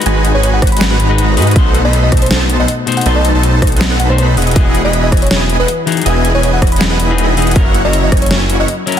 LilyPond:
<<
  \new Staff \with { instrumentName = "FM electric piano" } { \time 4/4 \key e \lydian \tempo 4 = 160 r8. cis''16 cis''16 fis''8 b''4. r8. | r8. dis''8 dis''8 c''16 r8. dis''16 dis''16 r8 fis''16~ | fis''16 dis''8 r4. r16 fis''16 c''16 c''16 r8. | r8. dis''8 dis''8 cis''16 r8. b'8. r8 |
r8. cis''16 cis''16 fis''8 b''4. r8. | r8. dis''8 dis''8 cis''16 cis''16 r8 dis''16 dis''16 r8. | }
  \new Staff \with { instrumentName = "Supersaw synth" } { \time 4/4 \key e \lydian <gis dis' fis' b' gis''>8. <gis dis' fis' b' gis''>8. <gis dis' fis' b' fis''>4 <gis dis' fis' b' ais''>4 <gis dis' fis' b' dis''>8 | <b dis' a' c'' fis''>8. <b dis' a' c'' b''>8. <b dis' a' c'' a''>4~ <b dis' a' c'' a''>16 <b dis' a' c'' fis''>16 r4 | <b dis' a' c'' a''>8. <b dis' a' c'' a''>8. <b dis' a' c'' fis''>4 <b dis' a' c'' b''>4 <b e' gis' dis'' fis''>8 | <b e' gis' dis'' fis''>8. <b e' gis' dis'' b''>8. <b e' gis' dis'' gis''>4~ <b e' gis' dis'' gis''>16 <b e' gis' dis'' fis''>16 r4 |
<b e' gis' dis'' gis''>8. <b e' gis' dis'' gis''>8. <b e' gis' dis'' fis''>4 <b e' gis' dis'' b''>4 <b e' gis' dis'' fis''>8 | <ais e' fis' cis'' fis''>8. <ais e' fis' cis'' ais''>8. <ais e' fis' cis'' gis''>4~ <ais e' fis' cis'' gis''>16 <ais e' fis' cis'' fis''>16 r4 | }
  \new Staff \with { instrumentName = "Clean electric guitar" } { \time 4/4 \key e \lydian <gis dis' fis' b'>2~ <gis dis' fis' b'>8. <gis dis' fis' b'>8. <gis dis' fis' b'>8 | <b, a dis' c'''>2.~ <b, a dis' c'''>8 <b, a dis' c''>8 | <b, a dis' c'''>2~ <b, a dis' c'''>8. <b, a dis' c''>8. r8 | <e fis' gis' dis''>2.~ <e fis' gis' dis''>8 <e dis' fis' gis'>8 |
<e fis' gis' dis''>2~ <e fis' gis' dis''>8. <e dis' fis' gis'>8. <e dis' fis' gis'>8 | <fis cis' e' ais'>2.~ <fis cis' e' ais'>8 <fis cis' e' ais'>8 | }
  \new Staff \with { instrumentName = "Detuned saw bass" } { \clef bass \time 4/4 \key e \lydian gis,,8. gis,,8. gis,,4 gis,,4 gis,8 | b,,8. b,,8. b,,4~ b,,16 b,,16 r4 | b,,8. b,,8. b,,4 b,,4 e,,8 | e,,8. e,,8. e,,4~ e,,16 e,,16 r4 |
e,,8. e,,8. e,,4 e,,4 e,,8 | fis,,8. fis,,8. fis,,4~ fis,,16 fis,,16 r4 | }
  \new DrumStaff \with { instrumentName = "Drums" } \drummode { \time 4/4 hh8 hh8 hh8 <hh bd ss>32 hh32 hh32 hh32 <hh sn>8 hh8 hh8 hho32 hh32 hh32 hh32 | <hh bd>8 hh8 hh8 <hh bd ss>32 hh32 hh32 hh32 <hh sn>8 hh8 hh8 hh32 hh32 hh32 hh32 | hh8 hh8 hh8 <hh bd ss>32 hh32 hh32 hh32 <hh sn>8 hh8 hh8 hho32 hh32 hh32 hh32 | <hh bd>8 hh8 hh8 <hh bd ss>32 hh32 hh32 hh32 <hh sn>8 hh8 hh8 hh32 hh32 hh32 hh32 |
hh8 hh8 hh8 <hh bd ss>32 hh32 hh32 hh32 <hh sn>8 hh8 hh8 hho32 hh32 hh32 hh32 | <hh bd>8 hh8 hh8 <hh bd ss>32 hh32 hh32 hh32 sn8 hh8 hh8 hh32 hh16. | }
>>